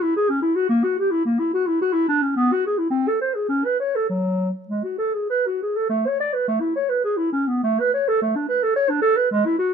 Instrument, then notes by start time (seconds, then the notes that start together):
clarinet
0.02 E4
0.16 G#4
0.29 C#4
0.42 E4
0.55 F#4
0.69 A#3
0.84 F#4
0.99 G4
1.11 E4
1.25 A#3
1.39 E4
1.54 F#4
1.67 E4
1.81 F#4
1.93 E4
2.08 D4
2.22 C#4
2.36 B3
2.52 F#4
2.66 G#4
2.78 E4
2.90 C4
3.08 A4
3.21 C5
3.35 G#4
3.49 C#4
3.65 B4
3.80 C#5
3.96 A4
4.09 F#3
4.68 G#3
4.83 F#4
4.98 A4
5.14 G#4
5.30 B4
5.46 F#4
5.62 G#4
5.76 A4
5.89 A3
6.07 C#5
6.20 D5
6.33 B4
6.48 A3
6.61 E4
6.76 C#5
6.89 B4
7.04 G#4
7.17 E4
7.32 C#4
7.47 B3
7.63 A3
7.80 B4
7.94 C#5
8.08 A4
8.22 A3
8.36 D4
8.49 B4
8.63 A4
8.76 C#5
8.89 D4
9.02 A4
9.17 B4
9.31 G#3
9.46 E4
9.58 F#4